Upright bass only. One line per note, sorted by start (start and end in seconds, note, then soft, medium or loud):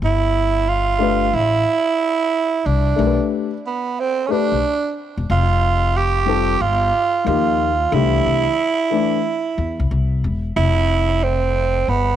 0.02 1.30 G1 medium
1.33 1.63 A1 medium
2.66 2.95 C2 medium
2.99 3.17 B1 medium
4.52 4.62 B1 medium
5.17 5.28 E1 medium
5.30 6.57 F1 loud
6.61 6.90 G1 medium
7.26 7.85 D#2 loud
7.92 8.22 C2 loud
8.25 8.45 C2 medium
9.58 9.77 E2 medium
9.80 9.90 C2 medium
9.91 10.25 C2 medium
10.24 10.53 E1 medium
10.56 11.84 F1 loud
11.88 12.16 G1 medium